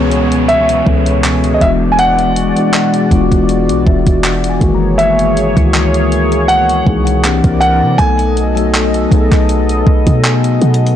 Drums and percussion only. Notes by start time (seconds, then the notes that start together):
0.12 closed hi-hat
0.32 closed hi-hat
0.49 closed hi-hat
0.69 closed hi-hat
0.87 kick
1.06 closed hi-hat
1.24 clap, closed hi-hat
1.44 closed hi-hat
1.61 kick, closed hi-hat
1.99 closed hi-hat
2.19 closed hi-hat
2.36 closed hi-hat
2.57 closed hi-hat
2.74 clap, closed hi-hat
2.94 closed hi-hat
3.11 kick, closed hi-hat
3.32 kick, closed hi-hat
3.49 closed hi-hat
3.69 closed hi-hat
3.87 kick
4.07 kick, closed hi-hat
4.24 clap, closed hi-hat
4.44 closed hi-hat
4.61 kick, closed hi-hat
4.99 closed hi-hat
5.19 closed hi-hat
5.37 closed hi-hat
5.57 kick, closed hi-hat
5.74 clap, closed hi-hat
5.94 closed hi-hat
6.12 closed hi-hat
6.32 closed hi-hat
6.49 closed hi-hat
6.69 closed hi-hat
6.87 kick
7.07 closed hi-hat
7.24 clap, closed hi-hat
7.44 kick, closed hi-hat
7.62 closed hi-hat
7.99 kick, closed hi-hat
8.19 closed hi-hat
8.37 closed hi-hat
8.57 closed hi-hat
8.74 clap, closed hi-hat
8.94 closed hi-hat
9.12 kick, closed hi-hat
9.32 kick, clap, closed hi-hat
9.49 closed hi-hat
9.69 closed hi-hat
9.87 kick
10.07 kick, closed hi-hat
10.24 clap, closed hi-hat
10.44 closed hi-hat
10.62 closed hi-hat
10.74 closed hi-hat
10.87 closed hi-hat